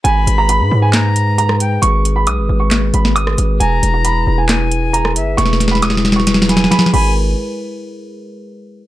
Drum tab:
CC |------------------------------------------------|------------------------------------------------|------------------------------------------------|------------------------------------------x-----|
HH |x-----x-----x-----------x-----x-----x-----x-----|x-----x-----x-----------x-----x-----x-----x-----|x-----x-----x-----------x-----x-----x-----x-----|x-----x-----x-----------x-----x-----x-----------|
CP |------------------------x-----------------------|------------------------x-----------------------|------------------------x-----------------------|------------------------------------------------|
SD |------------------------o--------------r--------|------------------------o--------o-----r--------|------------------------o--------------r--------|o-o-o-o-o-o-o-o-o-o-o-o-o-o-o-o-o-o-o-o-o-------|

CC |------------------------------------------------|
HH |------------------------------------------------|
CP |------------------------------------------------|
SD |------------------------------------------------|